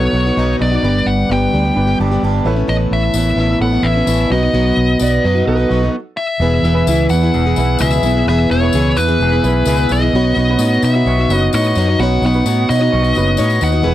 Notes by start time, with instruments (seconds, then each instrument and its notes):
Already playing: clean electric guitar B2 F#3 B3, upright piano D#4 F#4 A4, tonewheel organ B4 D#5 F#5 D#6, lead electric guitar C#5
0.01 steel-string acoustic guitar B3 D#4 F#4
0.13 fingered electric bass B1, steel-string acoustic guitar F#3 B3 D#4 F#4
0.25 steel-string acoustic guitar B3 D#4 F#4
0.37 fingered electric bass B1, steel-string acoustic guitar B2 F#3 B3 D#4 F#4
0.59 fingered electric bass B1, steel-string acoustic guitar F#3 B3 D#4 F#4, lead electric guitar D5
0.72 steel-string acoustic guitar B3 D#4 F#4
0.82 fingered electric bass G1, steel-string acoustic guitar G2 D3 G3 B3 D4 G4, upright piano D4 G4 B4, tonewheel organ D5 G5 D6
1.06 fingered electric bass G1, lead electric guitar F#5
1.29 fingered electric bass G1, steel-string acoustic guitar G2 D3 G3 B3 D4 G4, lead electric guitar G5
1.53 fingered electric bass D2, steel-string acoustic guitar G3 B3 D4 G4
1.65 steel-string acoustic guitar G3 B3 D4 G4
1.75 fingered electric bass G1, clean electric guitar B3, upright piano D4 G4 B4
1.87 steel-string acoustic guitar G3 B3 D4 G4
1.99 fingered electric bass G1, steel-string acoustic guitar G3 B3 D4 G4, upright piano A5
2.11 steel-string acoustic guitar G3 B3 D4 G4
2.23 fingered electric bass G1, steel-string acoustic guitar D3 G3 B3 D4 G4, upright piano G5
2.45 fingered electric bass A1, clean electric guitar A2, steel-string acoustic guitar E3 B3 C#4 E4, upright piano C#4 A4 B4 E5, tonewheel organ E5 A5 C#6
2.55 steel-string acoustic guitar B3 C#4 E4
2.68 fingered electric bass A1, steel-string acoustic guitar A2 E3 B3 C#4 E4, lead electric guitar D#5
2.91 fingered electric bass A1, lead electric guitar E5
3.13 fingered electric bass A1, steel-string acoustic guitar A2 E3 B3 C#4 E4, tambourine
3.36 fingered electric bass A1, steel-string acoustic guitar E3 B3 C#4 E4
3.49 steel-string acoustic guitar B3 C#4 E4
3.60 fingered electric bass A1, clean electric guitar B3, upright piano C#4 A4 B4, lead electric guitar F#5
3.73 steel-string acoustic guitar B3 C#4 E4
3.83 fingered electric bass A1, steel-string acoustic guitar E3 B3 C#4, clean electric guitar E4, lead electric guitar E5
3.88 steel-string acoustic guitar E4
3.94 steel-string acoustic guitar B3 C#4 E4
4.06 fingered electric bass A1, steel-string acoustic guitar A2 E3 B3 C#4 E4, tambourine
4.27 fingered electric bass B1, clean electric guitar B2, steel-string acoustic guitar F#3, tonewheel organ B4 D#5 F#5 D#6
4.32 steel-string acoustic guitar B3 D#4 F#4, upright piano D#4 F#4 B4, lead electric guitar D#5
4.42 steel-string acoustic guitar B3 D#4 F#4
4.53 fingered electric bass B1, steel-string acoustic guitar B2 F#3 B3 D#4 F#4
4.77 fingered electric bass B1
4.99 fingered electric bass B1, steel-string acoustic guitar B2 F#3 B3 D#4 F#4, electric slide guitar D5, tambourine
5.24 fingered electric bass F#2, steel-string acoustic guitar F#3 B3 D#4 F#4, electric slide guitar B4
5.35 steel-string acoustic guitar B3 D#4 F#4
5.47 fingered electric bass B1, clean electric guitar B3, upright piano D#4 F#4 A4, electric slide guitar B4
5.57 steel-string acoustic guitar B3 D#4 F#4
5.69 fingered electric bass B1, steel-string acoustic guitar F#3 B3 D#4, clean electric guitar F#4
5.73 steel-string acoustic guitar F#4
5.83 steel-string acoustic guitar B3 D#4 F#4
6.17 lead electric guitar E5
6.40 fingered electric bass E1, steel-string acoustic guitar E2 B2 E3 B3 E4 G#4, upright piano B3 E4 G#4 B4, tonewheel organ B4 E5 G#5 E6
6.63 fingered electric bass E1, steel-string acoustic guitar E3 B3 E4, tambourine
6.67 steel-string acoustic guitar G#4
6.73 upright piano B3 E4 G#4 B4
6.87 fingered electric bass C#2, steel-string acoustic guitar E2 B2 E3 B3 E4 G#4, tambourine
7.09 fingered electric bass E2, steel-string acoustic guitar E3 B3 G#4, lead electric guitar F#5, tambourine
7.21 steel-string acoustic guitar E3 B3 E4 G#4, tambourine
7.34 fingered electric bass E1, clean electric guitar G#4, tambourine
7.46 steel-string acoustic guitar E3 B3 E4 G#4
7.56 fingered electric bass B1, upright piano B3 E4 G#4 B4, clean electric guitar E4, tambourine
7.79 fingered electric bass C#2, steel-string acoustic guitar E2 B2 E3 B3 E4 G#4, lead electric guitar E5, tambourine
7.91 tambourine
8.03 fingered electric bass B1, steel-string acoustic guitar E3 B3 E4 G#4, tambourine
8.16 steel-string acoustic guitar E3 B3 E4 G#4
8.27 fingered electric bass E1, steel-string acoustic guitar E2 B2 E3 B3 E4 G#4, upright piano B3 E4 G#4 B4, lead electric guitar E5
8.50 fingered electric bass E1, steel-string acoustic guitar E3 B3 E4 G#4, lead electric guitar C#5, tambourine
8.61 upright piano B3 E4 G#4 B4
8.72 fingered electric bass C#2, steel-string acoustic guitar E2 B2 E3 B3 E4 G#4, tambourine
8.97 fingered electric bass E2, steel-string acoustic guitar E3 B3 E4 G#4, lead electric guitar B4, tambourine
9.08 steel-string acoustic guitar E3 B3 E4 G#4, tambourine
9.20 fingered electric bass E1, clean electric guitar G#4, tambourine
9.32 steel-string acoustic guitar E3 B3 E4 G#4
9.43 fingered electric bass B1, upright piano B3 E4 G#4 B4, clean electric guitar E4, tambourine
9.65 fingered electric bass C#2, steel-string acoustic guitar E2 B2 E3 B3 E4 G#4, tambourine
9.77 tambourine
9.89 fingered electric bass B1, steel-string acoustic guitar E3 B3 E4 G#4, lead electric guitar D#5, tambourine
9.99 steel-string acoustic guitar E3 B3 E4 G#4
10.13 fingered electric bass B1, steel-string acoustic guitar B3 D#4 F#4 C#5, upright piano C#4 D#4 F#4 B4, tonewheel organ B4 F#5 C#6 D#6
10.36 fingered electric bass B1, steel-string acoustic guitar B3 D#4 F#4 C#5, tambourine
10.49 upright piano C#4 D#4 F#4 B4
10.59 fingered electric bass A2, steel-string acoustic guitar B3 D#4 F#4 C#5, tambourine
10.81 fingered electric bass B2, steel-string acoustic guitar B3 D#4 F#4 C#5, lead electric guitar E5, tambourine
10.94 steel-string acoustic guitar D#4 F#4 C#5, tambourine
11.05 fingered electric bass B1, clean electric guitar C#5, tambourine
11.18 steel-string acoustic guitar F#4 C#5
11.29 fingered electric bass F#1, upright piano C#4 D#4 F#4 B4, clean electric guitar F#4, tambourine
11.34 lead electric guitar D#5
11.53 fingered electric bass A2, steel-string acoustic guitar B3 D#4 F#4 C#5, lead electric guitar D#5, tambourine
11.64 tambourine
11.75 fingered electric bass F#2, steel-string acoustic guitar B3 D#4 F#4 C#5, tambourine
11.88 steel-string acoustic guitar D#4 F#4 C#5
11.98 fingered electric bass B1, steel-string acoustic guitar B3 D#4 F#4, upright piano C#4 D#4 F#4 B4, lead electric guitar F#5, tambourine
12.03 steel-string acoustic guitar C#5
12.22 fingered electric bass B1, steel-string acoustic guitar B3 D#4, tambourine
12.26 steel-string acoustic guitar F#4 C#5, lead electric guitar F#5
12.33 upright piano C#4 D#4 F#4 B4, tambourine
12.45 fingered electric bass A2, steel-string acoustic guitar B3 D#4 F#4 C#5, tambourine
12.69 fingered electric bass B2, steel-string acoustic guitar B3 D#4 F#4 C#5, lead electric guitar D#5, tambourine
12.79 steel-string acoustic guitar D#4 F#4 C#5
12.92 fingered electric bass B1, clean electric guitar C#5
13.02 steel-string acoustic guitar D#4 F#4 C#5, tambourine
13.15 fingered electric bass F#1, upright piano C#4 D#4 F#4 B4, clean electric guitar F#4, tambourine
13.27 tambourine
13.37 fingered electric bass A2, steel-string acoustic guitar B3 D#4 F#4 C#5, tambourine
13.50 tambourine
13.60 fingered electric bass D#2, steel-string acoustic guitar B3 D#4 F#4 C#5, lead electric guitar F#5, tambourine
13.72 steel-string acoustic guitar D#4 F#4 C#5
13.82 fingered electric bass E1, steel-string acoustic guitar E3 B3 E4 G#4 B4, upright piano E4, tonewheel organ E5 G#5 E6
13.86 upright piano B3 G#4 B4